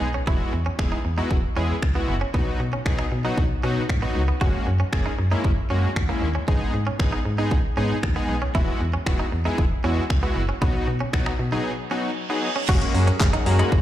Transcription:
0.01 B1, muted clean electric guitar stroke
0.14 C#4
0.27 E1 G#3 B3 E4 F#4, kick
0.53 E2, muted clean electric guitar stroke
0.66 C#4
0.79 E1 G#3 B3 E4 G#4, finger snap, kick
0.92 D#4
1.05 E2, muted clean electric guitar stroke
1.17 G#3 B3 D#4 E4 F#4
1.31 E1, kick
1.56 E2 G#3 B3 C#4 E4 G#4
1.82 C#2, finger snap, kick
1.95 G#3 B3 E4 F#4
2.08 F#1, muted clean electric guitar stroke
2.21 C#4
2.34 B1 F#3 B3 D#4 F#4, kick
2.60 B2, muted clean electric guitar stroke
2.73 C#4
2.86 B1 F#3 B3 D#4 G#4, finger snap, kick
2.99 D#4, finger snap
3.12 B2, muted clean electric guitar stroke
3.24 F#3 B3 D#4 F#4
3.38 B1, kick
3.63 B2 F#3 B3 C#4 D#4 F#4
3.89 G#2, finger snap, kick
4.02 F#3 B3 D#4 F#4
4.15 C#2, muted clean electric guitar stroke
4.28 B3
4.41 F#1 G#3 A#3 C#4 F#4, kick
4.67 F#2, muted clean electric guitar stroke
4.80 C#4
4.93 F#1 G#3 A#3 C#4 G#4, finger snap, kick
5.06 D#4
5.19 F#2, muted clean electric guitar stroke
5.31 G#3 A#3 C#4 D#4 E4
5.44 F#1, kick
5.70 F#2 G#3 A#3 C#4 F#4
5.96 D#2, finger snap, kick
6.09 G#3 A#3 C#4 E4
6.22 D#2, muted clean electric guitar stroke
6.35 C#4
6.48 G#1 G#3 B3 D#4 G#4, kick
6.74 G#2, muted clean electric guitar stroke
6.87 C#4
6.99 G#1 G#3 B3 D#4 G#4, finger snap, kick
7.13 D#4
7.25 G#2, muted clean electric guitar stroke
7.38 G#3 B3 D#4 G#4
7.51 G#1, kick
7.77 G#2 G#3 B3 C#4 D#4 G#4
8.03 D#2, finger snap, kick
8.16 G#3 B3 D#4 G#4
8.29 B1, muted clean electric guitar stroke
8.42 C#4
8.55 E1 G#3 B3 E4 F#4, kick
8.81 E2, muted clean electric guitar stroke
8.94 C#4
9.06 E1 G#3 B3 E4 F#4, finger snap, kick
9.19 D#4
9.32 E2, muted clean electric guitar stroke
9.45 G#3 B3 D#4 E4 G#4
9.58 E1, kick
9.84 E2 G#3 B3 C#4 E4 F#4
10.10 C#2, finger snap, kick
10.23 G#3 B3 E4 F#4
10.36 F#1, muted clean electric guitar stroke
10.49 C#4
10.62 B1 F#3 B3 D#4 F#4, kick
10.88 B2, muted clean electric guitar stroke
11.01 C#4
11.13 B1 F#3 B3 D#4 F#4, finger snap, kick
11.26 D#4, finger snap
11.39 B2, muted clean electric guitar stroke
11.52 F#3 B3 D#4 G#4
11.65 reverse cymbal
11.91 F#3 B3 C#4 D#4 F#4
12.30 F#3 B3 D#4 G#4
12.43 muted clean electric guitar stroke
12.56 C#4
12.68 F#1 F#3 G#3 A#3 C#4 F#4 G#4 A#4, kick, crash
12.81 closed hi-hat
12.94 F#2 A#5, muted clean electric guitar stroke, open hi-hat
13.07 C#4, closed hi-hat
13.20 F#1 G#4, kick, snare, clap
13.33 D#4 F#5, closed hi-hat
13.46 F#2 G#3 A#3 C#4 F#4 A#5, muted clean electric guitar stroke, open hi-hat
13.59 D#4 B5, closed hi-hat
13.72 F#1, kick

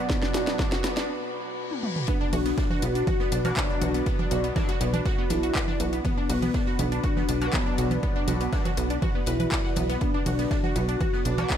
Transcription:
Already playing: B2 F#3 B3 D4 F#4 B4 D5 B5
0.09 B3, kick, snare, closed hi-hat
0.22 D4, snare
0.34 B1 F#4, snare, closed hi-hat
0.47 B3, snare, closed hi-hat
0.59 B2 F#3 D4, kick, snare, closed hi-hat
0.72 F#4, snare, closed hi-hat
0.84 B1 B3, snare, closed hi-hat
0.97 D4, snare, closed hi-hat
1.09 reverse cymbal
1.71 high tom
1.83 mid tom
1.96 mid tom
2.08 B3 D4 F#4 B4 D5 B5, kick, closed hi-hat, ride
2.21 D4
2.33 B1 F#4, closed hi-hat, open hi-hat, low conga
2.46 B3, snare, closed hi-hat
2.57 D4, kick, snare, closed hi-hat, ride
2.70 F#4, snare, low conga
2.82 B1 B3 F#4, closed hi-hat, ride
2.95 D4, closed hi-hat
3.07 F#4, kick, closed hi-hat, ride, low conga
3.19 B3, snare
3.32 B1 D4, closed hi-hat, ride
3.45 B2 F#3 D4 F#4, closed hi-hat, ride, low conga
3.57 D4 B4, kick, snare, clap, closed hi-hat, ride
3.70 D4
3.81 B1 F#4, closed hi-hat, ride, low conga
3.94 B3, closed hi-hat, ride
4.06 B3, kick, closed hi-hat, ride
4.19 D4, ride, low conga
4.31 B1 F#4, snare, closed hi-hat, ride
4.44 B3, closed hi-hat, ride
4.56 B2 F#3 D4, kick, snare, closed hi-hat, ride, low conga
4.69 F#4, snare, closed hi-hat
4.81 B1 B3, closed hi-hat, ride
4.94 D4, closed hi-hat, low conga
5.05 F#4, kick, snare, closed hi-hat, ride
5.18 B3
5.30 B1 D4 E4, snare, closed hi-hat, ride, low conga
5.43 F#4, closed hi-hat
5.55 B4, kick, snare, clap, closed hi-hat, ride
5.68 D4, snare, low conga
5.80 B1 F#4, closed hi-hat, ride
5.93 B3, closed hi-hat
6.05 B3, kick, closed hi-hat, ride, low conga
6.17 D4
6.29 B1 F#4, closed hi-hat, open hi-hat
6.42 B3, snare, closed hi-hat, low conga
6.54 D4, kick, snare, closed hi-hat, ride
6.66 F#4, snare
6.79 B1 B3 D4, closed hi-hat, ride, low conga
6.92 D4, closed hi-hat
7.03 F#4, kick, closed hi-hat, ride
7.16 B3, snare, low conga
7.29 B1 D4, closed hi-hat, ride
7.41 B2 F#3 D4 F#4, closed hi-hat, ride
7.53 B3 B4, kick, snare, clap, closed hi-hat, ride, low conga
7.66 D4
7.78 B1 F#4, closed hi-hat, ride
7.91 B3, closed hi-hat, ride, low conga
8.03 B3, kick, closed hi-hat, ride
8.16 D4, ride
8.28 B1 F#4, snare, closed hi-hat, ride, low conga
8.40 B3, closed hi-hat, ride
8.53 B2 F#3 D4, kick, snare, closed hi-hat, ride
8.65 F#4, snare, closed hi-hat, low conga
8.77 B1 B3, closed hi-hat, ride
8.90 D4, closed hi-hat
9.02 F#4, kick, closed hi-hat, ride, low conga
9.15 B3
9.26 B1 E4 B4, snare, closed hi-hat, ride
9.40 B4, closed hi-hat, low conga
9.51 D5, kick, snare, clap, closed hi-hat, ride
9.64 F#5, snare
9.76 B1 B3, closed hi-hat, ride, low conga
9.89 B3, snare, closed hi-hat
10.01 B3 D4 F#5, kick, closed hi-hat, ride
10.14 D4
10.26 B1 F#4, closed hi-hat, open hi-hat, low conga
10.39 B3, snare, closed hi-hat
10.51 D4, kick, snare, closed hi-hat, ride
10.63 F#4, snare, low conga
10.76 B1 B3 F#4, closed hi-hat, ride
10.89 D4, closed hi-hat
11.01 F#4, kick, closed hi-hat, ride, low conga
11.13 B3, snare
11.25 B1 D4, closed hi-hat, ride
11.38 B2 F#3 D4 F#4, closed hi-hat, ride, low conga
11.50 D4 B4, kick, snare, clap, closed hi-hat, ride

